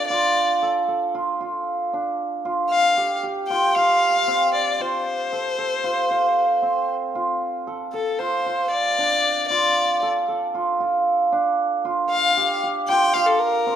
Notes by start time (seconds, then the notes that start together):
Already playing: C4 D4 A4
0.08 F4 D5
0.63 A4
0.88 A4
1.15 F4
1.41 F4
1.94 D4
2.45 F4
2.70 F5
2.97 G4
3.23 G4
3.48 F4 G5
3.75 F4 F5
4.28 C4
4.54 D5
4.80 F4 C5
5.33 A4
5.58 A4
5.84 F4
6.11 F4
6.62 C4
7.15 F4
7.67 A4
7.93 A4
8.19 F4 C5
8.46 F4
8.71 D5
8.99 D4
9.49 F4 D5
10.03 A4
10.28 A4
10.55 F4
10.80 F4
11.32 D4
11.85 F4
12.10 F5
12.37 G4
12.63 G4
12.88 F4 G5
13.14 F4 F5
13.26 A4
13.39 A#4
13.67 C4